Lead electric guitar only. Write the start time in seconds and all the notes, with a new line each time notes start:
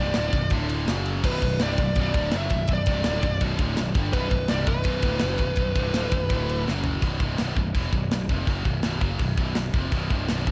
Already playing: D5
1.25 B4
1.63 D5
2.02 D5
2.37 E5
2.73 D5
4.13 B4
4.49 D5
4.68 B4